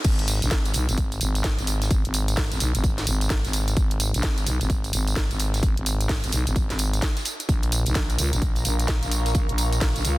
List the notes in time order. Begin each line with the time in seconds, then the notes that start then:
0.04 G#1, kick, closed hi-hat, crash, tambourine
0.19 closed hi-hat
0.28 closed hi-hat, open hi-hat, tambourine
0.42 A#1, closed hi-hat, tambourine
0.51 G#1, kick, snare, closed hi-hat, tambourine
0.65 closed hi-hat, tambourine
0.74 B1, closed hi-hat, open hi-hat, tambourine
0.89 G#1, closed hi-hat, tambourine
0.98 kick, closed hi-hat, tambourine
1.12 closed hi-hat, tambourine
1.21 G#1, closed hi-hat, open hi-hat, tambourine
1.35 closed hi-hat, tambourine
1.44 kick, snare, closed hi-hat, tambourine
1.59 G#1, closed hi-hat, tambourine
1.67 closed hi-hat, open hi-hat, tambourine
1.82 snare, closed hi-hat, tambourine
1.91 G#1, kick, closed hi-hat, tambourine
2.05 G#1, closed hi-hat
2.14 closed hi-hat, open hi-hat, tambourine
2.28 closed hi-hat, tambourine
2.37 kick, snare, closed hi-hat, open hi-hat
2.52 G#1, closed hi-hat, tambourine
2.60 B1, snare, closed hi-hat, open hi-hat, tambourine
2.75 G#1, closed hi-hat, tambourine
2.84 kick, closed hi-hat, tambourine
2.98 snare, closed hi-hat, tambourine
3.07 G#1, closed hi-hat, open hi-hat, tambourine
3.21 closed hi-hat, tambourine
3.30 kick, snare, closed hi-hat
3.45 G#1, snare, closed hi-hat, tambourine
3.53 closed hi-hat, open hi-hat, tambourine
3.68 closed hi-hat, tambourine
3.77 G#1, kick, closed hi-hat, tambourine
3.91 closed hi-hat
4.00 closed hi-hat, open hi-hat, tambourine
4.14 A#1, closed hi-hat, tambourine
4.22 G#1, kick, snare, closed hi-hat
4.38 closed hi-hat, tambourine
4.46 B1, closed hi-hat, open hi-hat, tambourine
4.61 G#1, closed hi-hat, tambourine
4.70 kick, closed hi-hat, tambourine
4.84 closed hi-hat, tambourine
4.93 G#1, closed hi-hat, open hi-hat, tambourine
5.08 closed hi-hat, tambourine
5.16 kick, snare, closed hi-hat
5.31 G#1, closed hi-hat, tambourine
5.39 closed hi-hat, open hi-hat, tambourine
5.54 snare, closed hi-hat, tambourine
5.63 G#1, kick, closed hi-hat
5.77 G#1, closed hi-hat
5.86 closed hi-hat, open hi-hat, tambourine
6.01 closed hi-hat, tambourine
6.09 kick, snare, closed hi-hat, open hi-hat, tambourine
6.24 G#1, closed hi-hat, tambourine
6.32 B1, snare, closed hi-hat, open hi-hat, tambourine
6.47 G#1, closed hi-hat, tambourine
6.56 kick, closed hi-hat, tambourine
6.70 G#1, snare, closed hi-hat, tambourine
6.79 closed hi-hat, open hi-hat, tambourine
6.93 closed hi-hat, tambourine
7.02 kick, snare, closed hi-hat
7.17 snare, closed hi-hat, tambourine
7.25 closed hi-hat, open hi-hat, tambourine
7.40 closed hi-hat, tambourine
7.49 A#1 A#4, kick, closed hi-hat, tambourine
7.63 F5, closed hi-hat
7.72 A#5, closed hi-hat, open hi-hat, tambourine
7.86 B1, closed hi-hat, tambourine
7.95 A#1, kick, snare, closed hi-hat
8.10 closed hi-hat, tambourine
8.19 C#2 C#6, closed hi-hat, open hi-hat, tambourine
8.33 A#1, closed hi-hat, tambourine
8.42 kick, closed hi-hat
8.56 closed hi-hat, tambourine
8.65 A#1, closed hi-hat, open hi-hat, tambourine
8.79 closed hi-hat, tambourine
8.88 kick, snare, closed hi-hat
9.03 A#1, closed hi-hat, tambourine
9.12 closed hi-hat, open hi-hat, tambourine
9.26 snare, closed hi-hat, tambourine
9.35 A#1, kick, closed hi-hat, tambourine
9.49 A#1, closed hi-hat
9.58 closed hi-hat, open hi-hat, tambourine
9.73 closed hi-hat, tambourine
9.81 kick, snare, closed hi-hat, open hi-hat, tambourine
9.96 A#1, closed hi-hat, tambourine
10.05 C#2, snare, closed hi-hat, open hi-hat, tambourine